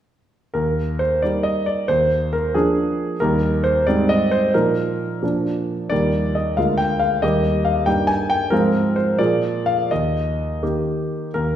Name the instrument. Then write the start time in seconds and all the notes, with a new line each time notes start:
grand piano
0.54 D#2 A#4
0.99 C5
1.22 G3 A#3 D#4 D5
1.43 D#5
1.66 D5
1.88 D#2 C5
2.33 A#4
2.54 F3 A#3 D4 G#4
3.20 D#2 G3 A#3 D#4 A#4
3.64 C5
3.87 G#2 G3 C4 D#4 D5
4.09 D#5
4.31 C5
4.54 A#2 F3 A#3 D#4 A#4
5.23 A#2 F3 A#3 D4
5.90 D#2 G3 A#3 D#4 D5
6.35 D#5
6.57 D2 G#3 A#3 F4 F5
6.78 G5
7.00 F5
7.22 D#2 G3 A#3 G4 D#5
7.65 F5
7.86 G2 G3 A#3 D#4 G5
8.07 G#5
8.30 G5
8.50 G#2 F3 C4 F4 A#4
8.96 C5
9.19 A#2 F3 A#3 G#4 D5
9.66 F5
9.91 D#2 D#5
10.63 D#3 A#3 G4
11.34 D#2 A#4